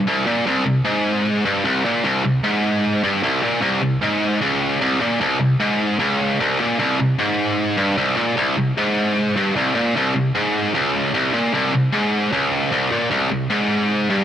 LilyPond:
\new Staff \with { instrumentName = "Distorted electric guitar" } { \clef bass \time 4/4 \key des \lydian \tempo 4 = 152 c,8 bes,8 c,8 c,8 aes,4. g,8 | c,8 bes,8 c,8 c,8 aes,4. g,8 | c,8 bes,8 c,8 c,8 aes,4 des,4 | c,8 bes,8 c,8 c,8 aes,4 des,4 |
c,8 bes,8 c,8 c,8 aes,4. g,8 | c,8 bes,8 c,8 c,8 aes,4. g,8 | c,8 bes,8 c,8 c,8 aes,4 des,4 | c,8 bes,8 c,8 c,8 aes,4 des,4 |
c,8 bes,8 c,8 c,8 aes,4. g,8 | }